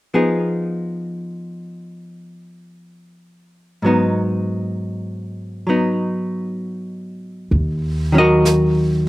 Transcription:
0.14 3.82 F3 soft
0.14 3.82 B3 soft
0.14 3.83 D#4 soft
0.14 3.83 G#4 soft
3.82 7.52 G#2 soft
3.82 5.66 F#3 soft
3.82 5.68 B3 soft
3.87 5.69 D#4 soft
5.67 7.52 F#3 soft
5.67 7.53 B3 soft
5.67 7.54 D#4 soft
7.51 9.09 D#2 medium
7.51 brush sweep soft
8.12 9.09 D#3 soft
8.12 9.09 F#3 soft
8.12 8.19 C#4 soft
8.18 9.09 F#4 soft
8.18 9.09 A#4 soft
8.18 9.09 D#5 medium
8.45 brush sweep soft
8.45 snare soft
8.45 hi-hat pedal soft

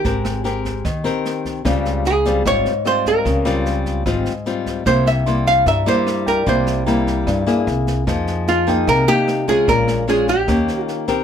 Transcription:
0.00 0.42 G4 medium
0.05 0.81 G#1 loud
0.05 0.83 G#3 medium
0.05 0.41 C4 medium
0.05 0.42 G4 medium
0.05 0.42 A#4 medium
0.05 kick medium
0.05 snare soft
0.25 cross-stick medium
0.25 snare soft
0.44 0.84 C4 medium
0.44 0.85 G4 medium
0.44 0.85 A#4 medium
0.44 snare soft
0.65 kick soft
0.65 snare soft
0.85 1.03 D#2 medium
0.85 1.63 D#3 medium
0.85 kick medium
0.85 cross-stick medium
0.85 snare soft
1.04 1.61 C4 medium
1.04 1.62 G4 medium
1.04 1.62 A#4 medium
1.04 snare soft
1.25 snare soft
1.45 kick soft
1.45 snare soft
1.65 2.41 C#2 loud
1.65 2.43 C#3 medium
1.65 2.05 G3 medium
1.65 2.05 C4 medium
1.65 2.05 F4 medium
1.65 kick medium
1.65 cross-stick medium
1.65 snare soft
1.85 snare soft
2.05 2.43 G#4 medium
2.05 snare soft
2.25 2.42 G3 medium
2.25 2.42 C4 medium
2.25 2.43 F4 medium
2.25 kick soft
2.25 snare soft
2.46 2.64 G#1 medium
2.46 3.24 G#2 medium
2.46 2.71 G3 medium
2.46 2.71 C4 soft
2.46 2.72 F4 medium
2.46 2.87 C#5 loud
2.46 kick medium
2.46 cross-stick medium
2.46 snare soft
2.66 snare soft
2.85 3.42 G3 soft
2.85 3.42 C4 soft
2.85 3.43 F4 medium
2.85 3.05 C5 medium
2.85 cross-stick medium
2.85 snare soft
3.06 3.63 A#4 medium
3.06 kick soft
3.06 snare soft
3.25 4.02 C#2 loud
3.25 4.04 C#3 medium
3.25 kick medium
3.25 snare soft
3.45 4.02 G3 medium
3.45 4.02 C4 medium
3.45 4.03 F4 medium
3.45 cross-stick medium
3.45 snare soft
3.66 snare soft
3.86 kick soft
3.86 snare soft
4.06 4.25 G#1 medium
4.06 4.84 G#2 medium
4.06 4.32 G3 medium
4.06 4.32 C4 medium
4.06 4.32 F4 medium
4.06 kick medium
4.06 cross-stick medium
4.06 snare soft
4.26 snare soft
4.46 4.83 G3 soft
4.46 4.83 C4 soft
4.46 4.83 F4 soft
4.46 snare soft
4.66 kick soft
4.66 snare soft
4.86 5.62 C2 medium
4.86 5.64 C3 medium
4.86 5.23 G3 medium
4.86 5.23 A#3 medium
4.86 5.23 E4 medium
4.86 5.07 C5 medium
4.86 kick medium
4.86 cross-stick medium
4.86 snare soft
5.06 5.47 E5 medium
5.06 snare soft
5.26 5.83 G3 medium
5.26 5.83 A#3 medium
5.26 5.84 E4 medium
5.26 6.10 C6 soft
5.26 snare soft
5.46 5.68 F5 loud
5.46 kick soft
5.46 snare soft
5.66 6.45 G2 medium
5.66 5.85 G2 medium
5.66 5.88 E5 loud
5.66 6.51 A#5 soft
5.66 kick medium
5.66 cross-stick medium
5.66 snare soft
5.86 6.43 G3 medium
5.86 6.43 A#3 medium
5.86 6.44 E4 medium
5.86 6.28 C5 medium
5.86 snare soft
6.07 cross-stick medium
6.07 snare soft
6.26 6.46 A#4 medium
6.26 7.10 G5 medium
6.26 kick soft
6.26 snare soft
6.46 7.23 C2 loud
6.46 7.25 C3 medium
6.46 6.83 G3 medium
6.46 6.83 A#3 medium
6.46 6.84 E4 medium
6.46 7.24 C5 medium
6.46 kick medium
6.46 snare soft
6.67 cross-stick medium
6.67 snare soft
6.86 7.44 G3 medium
6.86 7.44 A#3 medium
6.86 7.44 E4 medium
6.86 7.71 A#5 soft
6.86 snare soft
7.07 kick soft
7.07 snare soft
7.27 7.65 G2 medium
7.27 7.46 G2 medium
7.27 kick medium
7.27 cross-stick medium
7.27 snare soft
7.46 8.04 A#3 medium
7.46 8.04 E4 medium
7.46 8.04 G#4 medium
7.46 snare soft
7.67 8.04 C2 loud
7.67 snare soft
7.87 kick soft
7.87 snare soft
8.07 8.83 F2 loud
8.07 8.85 F3 medium
8.07 8.64 A#3 medium
8.07 8.64 D#4 medium
8.07 8.65 G#4 medium
8.07 kick medium
8.07 cross-stick medium
8.07 snare soft
8.27 snare soft
8.47 8.85 F4 medium
8.47 snare soft
8.67 9.04 A#3 medium
8.67 9.04 D#4 medium
8.67 9.04 G#4 medium
8.67 9.51 G5 medium
8.67 kick soft
8.67 snare soft
8.87 9.06 C2 medium
8.87 9.66 C3 medium
8.87 9.09 A#4 loud
8.87 kick medium
8.87 cross-stick medium
8.87 snare soft
9.08 9.44 A#3 medium
9.08 9.45 D#4 medium
9.08 9.49 G4 loud
9.08 snare soft
9.28 cross-stick medium
9.28 snare soft
9.48 10.05 G#3 medium
9.48 10.05 C#4 medium
9.48 10.05 F4 medium
9.48 9.69 G#4 medium
9.48 kick soft
9.48 snare soft
9.67 10.44 A#1 loud
9.67 10.46 A#2 medium
9.67 10.06 A#4 medium
9.67 kick medium
9.67 snare soft
9.88 cross-stick medium
9.88 snare soft
10.08 10.33 G#3 medium
10.08 10.34 C#4 medium
10.08 10.34 F4 medium
10.08 10.29 G#4 medium
10.08 snare soft
10.28 10.84 G4 medium
10.28 kick soft
10.28 snare soft
10.47 10.67 D#2 medium
10.47 11.24 D#3 medium
10.47 11.05 A#3 medium
10.47 11.05 C#4 medium
10.47 11.05 G4 medium
10.47 11.24 G5 soft
10.47 kick medium
10.47 cross-stick medium
10.47 snare soft
10.68 snare soft
10.84 11.05 F4 medium
10.84 snare soft
11.08 11.24 C4 medium
11.08 11.24 G4 medium
11.08 11.24 A#4 medium
11.08 kick soft
11.08 snare soft

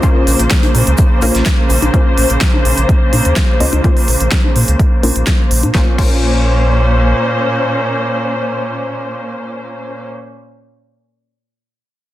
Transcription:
0.00 5.71 C#3 medium
0.00 5.71 A#3 medium
0.00 1.20 A#3 medium
0.00 1.20 C#4 medium
0.00 1.20 F4 medium
0.00 5.71 C5 medium
0.00 1.20 C5 loud
0.00 kick loud
0.00 closed hi-hat medium
0.00 shaker medium
0.27 0.35 A#1 medium
0.27 open hi-hat loud
0.27 shaker medium
0.40 0.47 A#1 medium
0.40 closed hi-hat medium
0.51 kick loud
0.51 snare loud
0.51 closed hi-hat medium
0.51 shaker medium
0.63 closed hi-hat soft
0.63 high conga medium
0.75 0.83 A#2 loud
0.75 open hi-hat loud
0.75 shaker medium
0.87 0.95 C#2 medium
0.87 closed hi-hat medium
0.98 kick loud
0.98 closed hi-hat medium
0.98 shaker medium
1.22 1.30 A#1 medium
1.22 1.91 A#3 medium
1.22 1.91 C#4 medium
1.22 1.91 F4 medium
1.22 1.91 A#4 medium
1.22 open hi-hat loud
1.22 high conga medium
1.22 shaker medium
1.35 1.42 A#1 medium
1.35 snare soft
1.35 closed hi-hat medium
1.46 kick loud
1.46 snare loud
1.46 closed hi-hat soft
1.46 shaker medium
1.70 1.78 A#1 medium
1.70 open hi-hat loud
1.70 shaker medium
1.82 1.90 A#1 medium
1.82 closed hi-hat medium
1.82 high conga medium
1.94 3.58 A#3 medium
1.94 3.58 C#4 medium
1.94 3.58 F4 medium
1.94 3.58 C5 medium
1.94 kick loud
1.94 closed hi-hat soft
2.18 2.26 A#1 medium
2.18 open hi-hat loud
2.30 2.37 A#1 medium
2.30 closed hi-hat medium
2.41 kick loud
2.41 snare loud
2.41 closed hi-hat soft
2.54 high conga medium
2.65 2.73 A#1 medium
2.65 open hi-hat loud
2.78 2.85 A#1 medium
2.78 closed hi-hat medium
2.89 kick loud
2.89 closed hi-hat soft
3.13 3.21 A#2 medium
3.13 open hi-hat loud
3.13 high conga medium
3.25 3.33 D#2 medium
3.25 closed hi-hat medium
3.36 kick loud
3.36 snare loud
3.36 closed hi-hat soft
3.60 3.68 C#2 medium
3.60 3.81 A#3 medium
3.60 3.81 C#4 medium
3.60 3.81 F4 medium
3.60 3.81 D#5 medium
3.60 open hi-hat loud
3.73 3.80 C#2 medium
3.73 closed hi-hat medium
3.73 high conga medium
3.84 5.00 A#3 medium
3.84 5.00 C#4 medium
3.84 5.00 F4 medium
3.84 5.00 C5 medium
3.84 kick loud
3.84 closed hi-hat soft
3.97 open hi-hat medium
4.08 4.16 A#1 medium
4.08 open hi-hat loud
4.20 4.28 A#1 medium
4.20 closed hi-hat medium
4.32 kick loud
4.32 snare loud
4.32 closed hi-hat soft
4.44 high conga medium
4.56 4.64 A#2 medium
4.56 open hi-hat loud
4.68 4.75 C#2 medium
4.68 closed hi-hat medium
4.79 kick loud
4.79 closed hi-hat soft
5.03 5.11 A#1 medium
5.03 5.72 A#3 medium
5.03 5.72 C#4 medium
5.03 5.72 F4 medium
5.03 5.72 A#4 medium
5.03 open hi-hat loud
5.03 high conga medium
5.16 5.23 A#1 medium
5.16 closed hi-hat medium
5.27 kick loud
5.27 snare loud
5.27 closed hi-hat soft
5.51 5.65 A#1 medium
5.51 open hi-hat loud
5.63 5.71 A#2 medium
5.63 closed hi-hat medium
5.63 high conga medium
5.75 5.88 A#1 medium
5.75 10.05 A#2 medium
5.75 5.88 A#3 medium
5.75 10.06 A#3 medium
5.75 5.88 C#4 medium
5.75 10.05 C#4 medium
5.75 5.88 F4 medium
5.75 5.88 C5 medium
5.75 10.05 C5 medium
5.75 kick loud
5.75 snare medium
5.98 7.14 A#1 medium
5.98 10.29 A#3 medium
5.98 10.29 C#4 medium
5.98 10.29 F4 medium
5.98 10.29 C5 medium
5.98 kick loud
5.98 crash medium

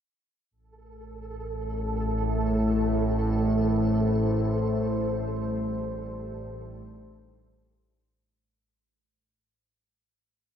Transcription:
0.51 8.49 A1 medium
0.51 8.48 A2 medium
0.51 4.46 A3 medium
0.51 8.41 A4 medium
1.34 4.45 E4 medium
2.29 8.39 C5 medium
4.42 8.37 G3 medium
6.10 8.38 D#4 medium

